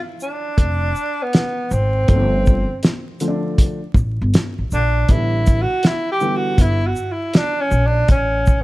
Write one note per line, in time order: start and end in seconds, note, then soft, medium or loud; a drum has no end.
0.20 1.24 D4 loud
0.20 shaker medium
0.58 0.91 F1 medium
0.58 kick medium
0.58 closed hi-hat medium
0.96 shaker soft
1.23 1.74 B3 medium
1.33 snare loud
1.33 closed hi-hat medium
1.71 2.04 G#1 medium
1.71 2.84 C4 loud
1.71 shaker medium
2.08 2.63 G1 loud
2.08 2.65 D3 medium
2.08 2.66 F3 medium
2.08 2.66 A3 medium
2.08 2.17 B3 medium
2.08 kick loud
2.08 closed hi-hat medium
2.15 2.69 C4 medium
2.46 kick medium
2.46 shaker medium
2.83 snare loud
2.83 closed hi-hat medium
3.20 3.78 D3 medium
3.20 3.78 F3 medium
3.20 3.79 A3 medium
3.20 3.30 C4 medium
3.20 closed hi-hat medium
3.20 shaker medium
3.28 3.82 D4 medium
3.58 kick medium
3.58 closed hi-hat medium
3.94 4.17 A1 medium
3.94 kick medium
3.94 shaker soft
4.21 4.32 G1 medium
4.34 snare loud
4.34 closed hi-hat medium
4.59 4.70 A1 medium
4.71 5.04 A#1 medium
4.71 5.12 D4 loud
4.71 shaker medium
5.09 5.63 A1 loud
5.09 5.66 D3 medium
5.09 5.66 E3 soft
5.09 5.66 G3 soft
5.09 5.66 B3 medium
5.09 5.63 E4 medium
5.09 kick medium
5.09 closed hi-hat medium
5.46 kick medium
5.46 closed hi-hat soft
5.46 shaker medium
5.62 5.88 F#4 loud
5.83 6.10 E4 medium
5.83 snare loud
5.83 closed hi-hat medium
6.12 6.38 G4 loud
6.20 6.78 D3 medium
6.20 6.78 E3 medium
6.20 6.79 G3 medium
6.20 6.79 B3 medium
6.20 shaker medium
6.36 6.63 F#4 loud
6.58 6.91 G1 medium
6.58 6.88 E4 loud
6.58 kick medium
6.58 closed hi-hat loud
6.87 7.13 F#4 medium
6.96 shaker soft
7.12 7.38 E4 medium
7.33 7.63 D4 loud
7.33 snare loud
7.33 closed hi-hat medium
7.61 7.88 C#4 medium
7.71 8.04 A#1 medium
7.71 shaker medium
7.86 8.10 D4 loud
8.08 8.63 A1 loud
8.08 8.62 C#4 loud
8.08 kick medium
8.08 closed hi-hat medium
8.46 kick medium
8.46 shaker medium